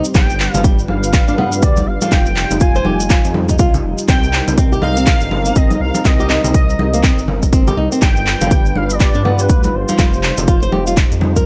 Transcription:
Already playing: G3 C4 D#4 C5
0.04 closed hi-hat, cabasa
0.14 G1 G3 D4 F4 B4 G5, kick, clap, closed hi-hat, high conga, low conga, cabasa
0.30 cabasa
0.40 clap
0.54 G1 F3, closed hi-hat, high conga, low conga, cabasa
0.64 G3, kick, closed hi-hat, cabasa
0.79 cabasa
0.88 G1 F5, high conga
1.03 closed hi-hat, cabasa
1.13 G3, kick, clap, closed hi-hat, cabasa
1.28 G2 D4, cabasa
1.38 B3, high conga, low conga
1.52 closed hi-hat, cabasa
1.62 D2 G3 D5, kick, closed hi-hat, cabasa
1.76 closed hi-hat, high conga, cabasa
1.87 G1 F5
2.01 F3, closed hi-hat, high conga, cabasa
2.12 F1 D#4 F4 G5, kick, clap, closed hi-hat, high conga, low conga, cabasa
2.26 cabasa
2.36 clap
2.51 F1, closed hi-hat, high conga, low conga, cabasa
2.60 F4 G#5, kick, closed hi-hat, cabasa
2.76 C5, cabasa
2.85 F1 G4, high conga
3.00 closed hi-hat, cabasa
3.10 F4, kick, clap, closed hi-hat, cabasa
3.24 F2, closed hi-hat, cabasa
3.34 high conga, low conga
3.49 D#4, kick, closed hi-hat, high conga, cabasa
3.58 C2 F4, kick, closed hi-hat, cabasa
3.74 closed hi-hat, low conga, cabasa
3.84 F1
3.98 closed hi-hat, cabasa
4.08 C2 C4 A#4 G5, kick, clap, closed hi-hat, high conga, low conga, cabasa
4.24 cabasa
4.33 clap
4.48 C2, closed hi-hat, high conga, low conga, cabasa
4.58 C4, kick, closed hi-hat, cabasa
4.72 G4, cabasa
4.82 C2 D#4 F5, high conga
4.97 C4, closed hi-hat, cabasa
5.07 kick, clap, closed hi-hat, cabasa
5.21 G1, cabasa
5.31 high conga, low conga
5.45 A#3, closed hi-hat, cabasa
5.56 G1 C4 D#5, kick, closed hi-hat, cabasa
5.70 closed hi-hat, high conga, cabasa
5.81 C2 F5
5.95 closed hi-hat, high conga, cabasa
6.05 C2 C4 D#5, kick, clap, closed hi-hat, high conga, low conga, cabasa
6.20 G4, cabasa
6.30 D#4, clap
6.44 C2 C4, closed hi-hat, high conga, low conga, cabasa
6.54 D#5, kick, closed hi-hat, cabasa
6.70 cabasa
6.79 C2, high conga
6.94 A#3, closed hi-hat, cabasa
7.03 C4, kick, clap, closed hi-hat, cabasa
7.18 G1, cabasa
7.28 high conga, low conga
7.42 kick, closed hi-hat, high conga, cabasa
7.53 G1 C4, kick, closed hi-hat, cabasa
7.67 G4, closed hi-hat, low conga, cabasa
7.77 C2 D#4
7.92 C4, closed hi-hat, cabasa
8.02 G1 G3 D4 F4 B4 G5, kick, clap, closed hi-hat, high conga, low conga, cabasa
8.16 cabasa
8.27 clap
8.41 G1 F3, closed hi-hat, high conga, low conga, cabasa
8.51 G3, kick, closed hi-hat, cabasa
8.66 cabasa
8.76 G1 F5, high conga
8.90 D5, closed hi-hat, cabasa
9.00 G3, kick, clap, closed hi-hat, cabasa
9.14 G2 D4, cabasa
9.25 B3, high conga, low conga
9.39 G3 B4, closed hi-hat, cabasa
9.49 D2, kick, closed hi-hat, cabasa
9.63 closed hi-hat, high conga, cabasa
9.74 G1 C5
9.89 F3, closed hi-hat, high conga, cabasa
9.98 F1 D#4 F4, kick, clap, closed hi-hat, high conga, low conga, cabasa
10.13 cabasa
10.23 clap
10.37 F1, closed hi-hat, high conga, low conga, cabasa
10.48 F4, kick, closed hi-hat, cabasa
10.62 C5, closed hi-hat, cabasa
10.72 F1 G4, high conga
10.87 F4, closed hi-hat, cabasa
10.97 kick, clap, closed hi-hat, cabasa
11.12 F2, closed hi-hat, cabasa
11.21 high conga, low conga
11.36 A#4, kick, closed hi-hat, high conga, cabasa

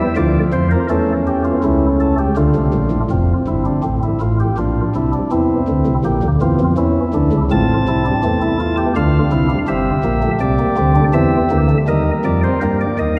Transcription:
0.00 E5
0.16 D2 D3 F3 F4 D5
0.53 F2 F3 C5
0.71 A#4
0.90 E2 E3 A3 C#4 A4
1.27 G4
1.45 F4
1.64 C#2 C#3 E4
2.00 A4
2.19 G4
2.37 D2 D3 A3 D4 F4
2.55 C2 C3
2.74 A#1 A#2
2.91 A1 A2
3.11 F1 F2 C4 F4
3.47 G1 G2 E4
3.65 D4
3.84 A1 A2 C4
4.03 E4
4.21 A1 A2 F4
4.40 G4
4.58 A#1 A#2 D4 F4
4.95 C2 C3 E4
5.13 D4
5.31 E2 E3 C4 E4
5.68 D2 D3
5.86 C2 C3
6.05 A#1 A#2 A#3 G4
6.23 D2 D3
6.41 E2 E3 C4 F4
6.60 F2 F3
6.77 E2 E3 C#4 E4
7.14 D2 D3 D4
7.32 C#2 C#3
7.51 A1 A2 C4 F4 A5
7.88 C2 C3 E4
8.06 D4
8.24 E2 E3 A3 C4
8.42 E4
8.60 F4
8.78 G4
8.96 D2 D3 D4 F4 F5
9.32 C2 C3 E4
9.50 D4
9.68 G1 G2 C4 G4 E5
10.04 A#1 A#2 A#3
10.22 A3
10.40 C2 C3 G3 D5
10.59 A#3
10.77 D2 D3 C4
10.96 D4
11.14 E2 E3 C4 E5
11.51 D2 D3 A#3
11.69 A3
11.88 D#2 D#3 G3 A#4 D#5
12.24 F2 F3 D5
12.43 C5
12.62 G2 G3 A#3 A#4
12.81 D5
12.99 D#2 D#3 D#5

